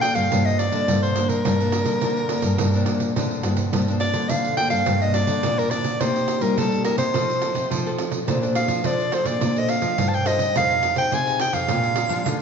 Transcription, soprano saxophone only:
0.01 0.16 G5 loud
0.15 0.47 F5 loud
0.46 0.60 D#5 medium
0.58 1.02 D5 medium
1.03 1.30 C5 medium
1.29 3.43 A#4 medium
4.00 4.31 D5 medium
4.29 4.56 F5 medium
4.57 4.69 G5 medium
4.70 5.03 F5 medium
5.02 5.15 D#5 medium
5.14 5.60 D5 medium
5.59 5.72 A#4 medium
5.71 6.02 D5 medium
6.00 6.43 C5 medium
6.41 6.59 A#4 medium
6.58 6.84 A4 medium
6.85 6.98 A#4 medium
6.98 7.94 C5 medium
8.56 8.87 F5 medium
8.86 9.15 D5 medium
9.14 9.28 C5 medium
9.26 9.59 D5 medium
9.58 9.71 D#5 medium
9.70 10.10 F5 medium
10.08 10.16 A5 medium
10.14 10.28 G5 medium
10.27 10.55 D#5 medium
10.57 10.96 F5 loud
10.98 11.15 G5 medium
11.14 11.40 G#5 medium
11.41 11.55 G5 medium
11.54 12.42 F5 medium

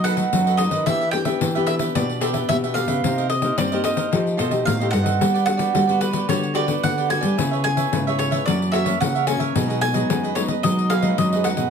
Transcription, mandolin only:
0.04 0.61 F#5 loud
0.57 0.84 D#5 medium
0.86 1.11 E5 medium
1.11 1.66 G5 loud
1.66 1.74 E5 medium
1.95 2.51 D5 medium
2.49 2.56 E5 medium
2.74 3.26 F5 medium
3.29 3.58 D#5 medium
3.58 3.84 D5 medium
3.84 4.63 D#5 medium
4.65 4.90 F5 medium
4.91 5.44 F#5 medium
5.46 5.98 F#5 loud
6.01 6.27 B4 medium
6.29 6.55 C#5 medium
6.55 6.84 D5 medium
6.83 7.09 F#5 medium
7.10 7.63 G#5 medium
7.64 8.15 G#5 medium
8.19 8.45 C#5 medium
8.46 8.72 D5 medium
8.72 9.00 E5 medium
9.01 9.27 F#5 medium
9.27 9.80 G#5 medium
9.81 10.33 G#5 loud
10.35 10.43 C#5 medium
10.63 10.92 D#5 loud
10.90 11.16 F5 medium
11.18 11.47 D#5 medium
11.45 11.70 F#5 medium

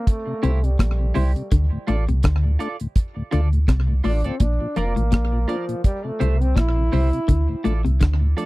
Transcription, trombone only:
0.00 0.10 A#3 medium
0.09 0.66 A3 medium
0.65 0.80 G3 medium
0.81 1.48 G3 medium
4.06 4.27 D4 medium
4.26 4.42 C4 medium
4.40 4.79 D4 medium
4.77 5.50 A#3 medium
5.49 5.84 F3 medium
5.85 6.07 G3 medium
6.05 6.42 A3 medium
6.41 6.58 C4 loud
6.56 7.65 E4 loud

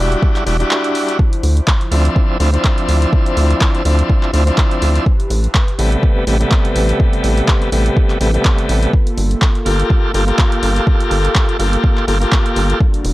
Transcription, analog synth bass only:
0.00 0.16 E1 medium
0.47 0.64 E1 loud
1.43 1.61 D2 medium
1.92 2.09 D2 loud
2.40 2.57 D2 loud
2.89 3.06 D2 medium
3.37 3.54 D2 medium
3.85 4.03 D2 medium
4.34 4.51 D2 medium
4.82 4.99 D2 medium
5.30 5.48 A1 loud
5.79 5.96 A1 medium
6.27 6.45 A1 medium
6.76 6.93 A1 medium
7.24 7.41 A1 loud
7.72 7.90 A1 medium
8.21 8.38 A1 medium
8.69 8.86 A1 medium
9.18 9.35 G1 loud
9.66 9.83 G1 medium
10.14 10.32 G1 loud
10.63 10.80 G1 medium
11.11 11.28 G1 loud
11.59 11.77 G1 medium
12.08 12.25 G1 loud
12.56 12.74 G1 medium
13.05 13.13 E1 medium

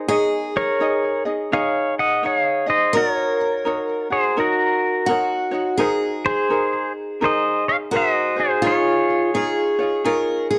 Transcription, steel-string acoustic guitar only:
0.08 2.90 G#4 medium
2.93 5.14 A#4 loud
5.06 5.80 F#4 medium
5.77 7.98 G#4 medium
7.91 8.61 F#4 medium
8.62 9.30 F4 medium
9.35 10.02 G#4 medium
10.05 10.46 A#4 medium
10.51 10.59 G#4 medium

